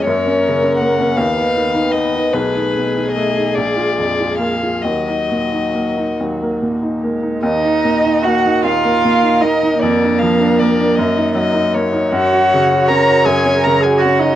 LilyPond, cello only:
\new Staff \with { instrumentName = "Cello" } { \time 6/8 \key ees \minor \tempo 4. = 51 bes4. b4. | a4. aes4. | ges4. ges8 bes8 aes8 | ees'4 ges'8 f'4 ees'8 |
bes2~ bes8 r8 | ges'4 bes'8 aes'8 bes'16 aes'16 ges'16 ees'16 | }